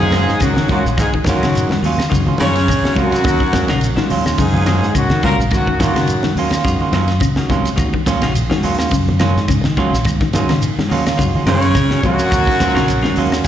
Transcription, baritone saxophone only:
0.00 0.39 G#2 medium
0.43 0.68 F#2 medium
0.71 0.83 F#2 medium
0.98 1.10 G#2 medium
1.27 1.79 F#2 medium
2.40 2.99 C#3 loud
2.97 4.10 F#2 medium
4.39 4.92 G#2 medium
4.97 5.22 F#2 medium
5.23 5.36 A#2 medium
5.51 5.78 F#2 medium
5.82 6.34 F#2 medium
11.47 12.00 C#3 loud
12.03 13.42 F#2 loud
13.44 13.48 G#2 medium

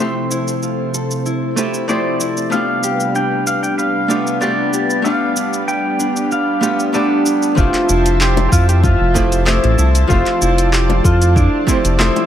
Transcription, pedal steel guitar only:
1.89 2.54 D5 medium
2.52 3.15 F5 medium
3.16 3.45 G5 medium
3.47 3.62 F5 medium
3.63 3.77 G5 medium
3.78 4.43 F5 medium
4.41 5.06 D5 medium
5.04 5.64 F5 medium
5.68 6.32 G5 medium
6.32 7.22 F5 medium
6.95 7.59 D4 medium
7.58 8.21 F4 loud
8.21 8.48 G4 loud
8.49 8.68 F4 loud
8.49 8.52 G4 medium
8.69 8.84 G4 medium
8.84 9.46 F4 loud
9.46 10.06 E4 loud
10.09 10.72 F4 loud
10.73 11.05 G4 loud
11.05 11.37 F4 loud
11.36 11.69 D4 loud
11.68 11.77 C4 loud
12.00 12.26 E4 loud

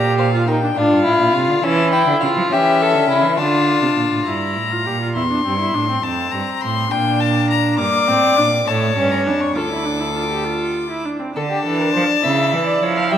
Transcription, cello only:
0.00 0.76 A#2 loud
0.76 0.92 A2 medium
0.91 1.05 G2 medium
1.06 1.12 A2 medium
1.20 1.33 A#2 medium
1.34 1.50 C3 medium
1.48 1.62 D3 medium
1.63 2.06 E3 medium
2.07 2.13 D3 medium
2.23 2.28 C#3 medium
2.37 2.42 F3 medium
2.51 2.96 E3 medium
2.95 3.08 D3 medium
3.08 3.25 C#3 medium
3.23 3.39 E3 medium
3.37 3.82 D3 medium
3.82 3.88 C3 medium
3.97 4.10 A#2 medium
4.11 4.25 A2 medium
4.26 4.58 G2 medium
4.56 4.87 A2 medium
4.86 5.17 A#2 medium
5.15 5.45 E2 medium
5.45 5.73 G2 medium
5.74 6.03 A2 medium
6.04 6.32 F2 medium
6.33 6.41 G2 medium
6.63 6.92 A2 medium
6.92 7.78 A#2 medium
7.79 7.87 G2 medium
8.08 8.16 A2 medium
8.38 8.67 A#2 medium
8.67 8.96 A2 medium
8.97 9.28 G2 medium
9.27 9.58 F2 medium
9.56 11.06 D2 medium
11.36 11.63 D3 medium
11.66 11.94 E3 medium
11.95 12.03 F3 medium
12.24 12.55 C#3 loud
12.53 12.82 E3 medium
12.82 13.13 F3 medium
13.12 13.18 G3 loud

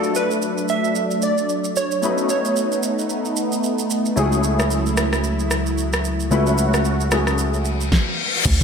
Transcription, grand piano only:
0.00 1.98 A3 medium
0.00 1.98 D4 medium
0.00 1.99 E4 medium
0.00 2.02 F#4 medium
0.00 1.99 D5 medium
2.02 4.13 A3 medium
2.02 4.13 C#4 medium
2.02 4.13 D#4 medium
2.02 4.13 F#4 medium
2.02 4.14 B4 medium
4.16 6.27 A3 medium
4.16 6.27 C#4 medium
4.16 6.27 E4 medium
4.16 6.28 F#4 medium
4.16 6.28 G#4 medium
6.31 7.10 A3 medium
6.31 7.10 C#4 medium
6.31 7.10 E4 medium
6.31 7.10 F#4 medium
6.31 7.12 B4 medium
7.11 7.92 A3 medium
7.11 7.92 C#4 medium
7.11 7.92 E4 medium
7.11 7.92 F#4 medium
7.11 7.92 G#4 medium

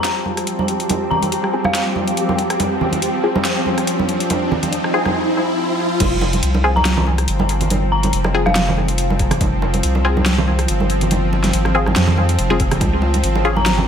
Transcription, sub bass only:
6.00 6.41 F1 medium
6.43 7.26 C2 loud
7.28 8.12 G1 medium
8.13 9.39 F1 loud
9.41 9.82 F1 loud
9.83 10.67 C2 loud
10.69 11.52 G1 medium
11.54 11.95 G#1 loud
11.96 12.37 F2 loud
12.39 12.80 F1 loud
12.81 13.22 C#2 medium
13.24 13.88 G#1 loud

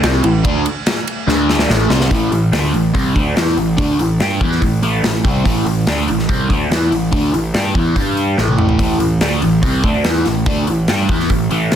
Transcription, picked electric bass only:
0.03 0.22 C2 medium
0.24 0.43 A1 medium
1.27 1.67 D2 medium
1.69 1.89 A1 medium
1.90 2.10 C2 medium
2.11 2.31 A1 medium
2.32 2.51 A1 medium
2.52 2.72 D2 medium
2.74 2.94 A1 medium
2.95 3.14 C2 medium
3.16 3.35 D2 medium
3.37 3.56 E2 medium
3.57 3.77 A1 medium
3.79 3.98 D2 medium
3.99 4.19 A1 medium
4.20 4.39 G2 medium
4.41 4.60 E2 medium
4.62 4.81 A1 medium
4.82 5.02 A1 medium
5.03 5.23 A1 medium
5.25 5.44 C2 medium
5.45 5.65 A1 medium
5.66 5.86 A1 medium
5.87 6.06 D2 medium
6.08 6.28 A1 medium
6.29 6.48 C2 medium
6.50 6.69 D2 medium
6.70 6.90 E2 medium
6.92 7.11 A1 medium
7.13 7.32 D2 medium
7.33 7.53 A1 medium
7.54 7.74 G2 medium
7.75 7.94 E2 medium
7.96 8.35 G2 medium
8.38 8.77 A1 medium
8.79 8.99 A1 medium
9.00 9.20 A1 medium
9.21 9.40 D2 medium
9.43 9.62 A1 medium
9.63 9.82 C2 medium
9.84 10.03 D2 medium
10.05 10.24 E2 medium
10.26 10.46 A1 medium
10.46 10.66 D2 medium
10.67 10.87 A1 medium
10.89 11.08 G2 medium
11.09 11.28 E2 medium
11.30 11.49 A1 medium
11.51 11.70 A1 medium
11.72 11.76 A1 medium

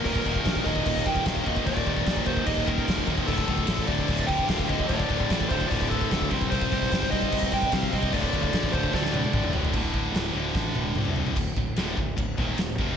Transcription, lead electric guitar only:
0.05 0.68 A#4 loud
0.64 1.07 D#5 loud
1.06 1.25 G5 loud
1.27 1.46 F5 loud
1.44 1.66 D#5 medium
1.66 2.26 D5 loud
2.26 2.46 C5 medium
2.46 2.68 D#5 loud
2.67 3.05 A#4 medium
3.27 3.90 A4 medium
3.86 4.29 D5 medium
4.27 4.47 G5 loud
4.48 4.70 F5 loud
4.68 4.88 D#5 loud
4.88 5.49 D5 loud
5.49 5.68 C5 medium
5.68 5.88 D5 loud
5.88 6.27 A4 loud
6.50 7.11 C5 loud
7.11 7.53 D#5 medium
7.54 7.73 G5 loud
7.73 7.92 F5 loud
7.93 8.12 D#5 medium
8.13 8.72 D5 loud
8.73 8.92 C5 medium
8.94 9.11 D5 medium
9.12 9.51 D5 medium

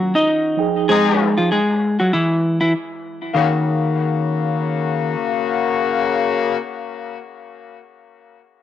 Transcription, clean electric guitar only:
0.00 0.13 F#3 medium
0.00 0.13 F#4 medium
0.15 0.85 D#4 medium
0.15 0.86 D#5 medium
0.89 1.35 G#3 medium
0.89 1.35 G#4 loud
1.37 1.50 F3 medium
1.37 1.49 F4 medium
1.52 1.97 G#3 medium
1.52 1.97 G#4 medium
1.99 2.11 F#3 medium
1.99 2.11 F#4 medium
2.13 2.59 E3 medium
2.13 2.58 E4 medium
2.61 2.73 E3 medium
2.61 2.72 E4 medium
3.35 5.14 D#3 medium

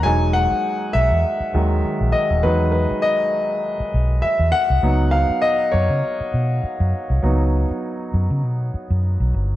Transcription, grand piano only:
0.03 0.90 F#3 medium
0.03 0.90 G#3 soft
0.03 0.91 D#4 medium
0.03 0.35 G#5 medium
0.33 0.90 F#5 loud
0.93 2.09 E5 loud
1.53 1.81 D#3 medium
1.53 1.81 F#3 soft
1.53 1.81 G#3 soft
2.12 2.44 D#5 medium
2.43 2.84 F#3 medium
2.43 2.85 G#3 soft
2.43 2.85 D#4 medium
2.43 2.70 B4 medium
2.72 3.04 B4 medium
3.02 4.26 D#5 medium
4.22 4.54 E5 medium
4.52 5.08 F#5 loud
4.83 5.69 F#3 soft
4.83 5.69 B3 soft
4.83 5.69 D#4 medium
5.11 5.40 F5 medium
5.42 5.73 D#5 medium
5.72 8.98 C#5 medium
7.22 7.63 F#3 medium
7.22 7.64 B3 soft
7.22 7.64 D#4 medium

